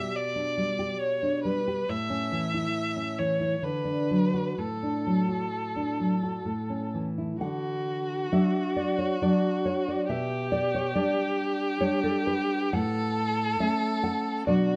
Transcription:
0.00 1.84 B2 soft
0.00 0.62 G4 soft
0.00 0.17 E5 medium
0.16 1.01 D5 medium
0.36 0.70 D4 soft
0.57 0.92 G3 soft
0.79 1.49 G4 soft
0.99 1.43 C#5 medium
1.23 1.59 D4 soft
1.44 1.81 G3 soft
1.44 1.91 B4 medium
1.68 1.90 G4 soft
1.89 3.59 A2 soft
1.89 3.20 E5 medium
2.10 2.45 C#4 soft
2.32 2.66 E3 soft
2.54 3.23 E4 soft
2.96 3.32 C#4 soft
3.19 3.55 E3 soft
3.19 3.65 C#5 medium
3.40 3.63 E4 soft
3.62 4.55 D3 soft
3.62 4.60 B4 medium
3.85 4.24 D4 soft
4.11 4.49 F#3 soft
4.34 4.58 F#4 soft
4.58 6.42 A2 soft
4.58 6.94 A4 soft
4.83 5.21 D4 soft
5.07 5.44 F#3 soft
5.29 6.04 F#4 soft
5.76 6.13 D4 soft
6.00 6.37 F#3 soft
6.23 6.46 F#4 soft
6.45 7.38 A2 soft
6.70 7.08 C#4 soft
6.94 7.32 E3 soft
7.18 7.41 E4 soft
7.41 8.29 D3 soft
7.41 10.06 F#4 medium
7.41 8.28 F#5 medium
8.32 9.17 F#3 soft
8.32 9.17 D4 soft
8.32 8.75 E5 medium
8.77 8.98 D5 medium
8.99 9.21 C#5 medium
9.21 10.06 F#3 soft
9.21 10.06 D4 soft
9.21 9.64 D5 medium
9.66 9.87 C#5 medium
9.88 10.09 D5 medium
10.09 10.93 B2 medium
10.09 12.75 G4 medium
10.09 10.51 E5 medium
10.52 10.74 D5 medium
10.74 10.95 C#5 medium
10.95 11.77 G3 soft
10.95 11.78 D4 soft
10.95 11.78 D5 medium
11.80 12.69 G3 soft
11.80 12.69 D4 soft
11.80 12.03 C#5 medium
12.04 12.27 A4 medium
12.27 12.71 B4 medium
12.73 13.57 A2 medium
12.73 14.47 A4 medium
12.73 13.56 F#5 medium
13.60 14.43 A3 soft
13.60 14.44 C#4 soft
13.60 14.01 E5 medium
14.03 14.46 F#5 medium
14.47 14.76 B2 soft
14.47 14.76 F#3 soft
14.47 14.76 D4 soft
14.47 14.76 F#4 soft
14.47 14.76 D5 medium

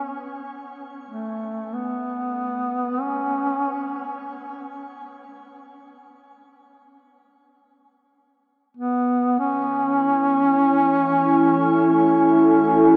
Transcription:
0.00 0.44 C#4 medium
1.09 1.75 A3 medium
1.74 3.03 B3 medium
3.01 3.96 C#4 medium
8.77 9.35 B3 medium
9.39 11.90 C#4 loud
9.39 12.97 E4 medium
10.60 12.97 A4 medium
10.84 12.97 F#5 medium
11.93 12.97 C#4 medium
12.06 12.97 C#5 medium

